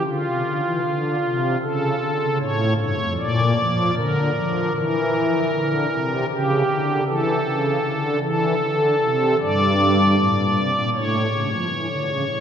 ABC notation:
X:1
M:4/4
L:1/16
Q:1/4=78
K:Dm
V:1 name="Pipe organ"
F8 A4 ^c2 c2 | d4 B4 B8 | G4 A6 A6 | d8 ^c8 |]
V:2 name="Pipe organ" clef=bass
D, C, D, E, D,2 C,2 ^C,2 D, C, A,,2 G,, F,, | B,,2 F,2 D,2 F,2 E,4 D,2 C,2 | ^C,2 D,2 E,2 C,2 D,2 E,2 D,2 =C,2 | G,,4 A,, B,, C, B,, A,,2 ^C, F, E, D, C, A,, |]